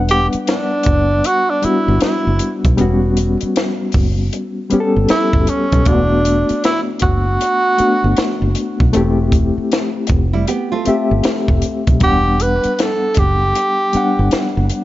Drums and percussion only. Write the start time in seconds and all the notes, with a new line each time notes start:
0.09 closed hi-hat
0.33 closed hi-hat
0.47 snare, closed hi-hat
0.83 kick, closed hi-hat
1.24 closed hi-hat
1.62 closed hi-hat
2.00 snare, closed hi-hat
2.39 closed hi-hat
2.64 kick, closed hi-hat
2.78 closed hi-hat
3.17 closed hi-hat
3.41 closed hi-hat
3.56 snare, closed hi-hat
3.92 kick, open hi-hat
4.33 closed hi-hat
4.70 closed hi-hat
5.09 snare, closed hi-hat
5.33 kick
5.47 closed hi-hat
5.72 kick, closed hi-hat
5.85 kick, closed hi-hat
6.25 closed hi-hat
6.49 closed hi-hat
6.64 snare, closed hi-hat
6.99 kick, closed hi-hat
7.41 closed hi-hat
7.78 closed hi-hat
8.16 snare, closed hi-hat
8.55 closed hi-hat
8.80 kick
8.93 closed hi-hat
9.32 kick, closed hi-hat
9.72 snare, closed hi-hat
10.07 kick, closed hi-hat
10.47 closed hi-hat
10.85 closed hi-hat
11.23 snare, closed hi-hat
11.48 kick
11.62 closed hi-hat
11.87 kick, closed hi-hat
12.00 kick, closed hi-hat
12.40 closed hi-hat
12.63 closed hi-hat
12.79 snare, closed hi-hat
13.14 kick, closed hi-hat
13.55 closed hi-hat
13.93 closed hi-hat
14.31 snare, closed hi-hat
14.69 closed hi-hat